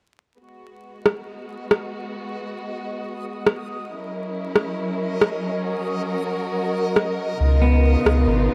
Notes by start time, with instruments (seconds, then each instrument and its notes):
0.40 string section G#3 B3 F#4, synth texture D#5
1.06 cross-stick
1.71 cross-stick
3.47 cross-stick
3.90 string section F#3 C#4 E4 A#4
4.56 cross-stick
5.21 cross-stick
5.64 string section F#4
6.96 cross-stick
7.40 sub bass C#2, string section B2 C#3 D#4 F4
7.62 clean electric guitar B3
8.05 sub bass C#2, cross-stick
8.27 sub bass G#1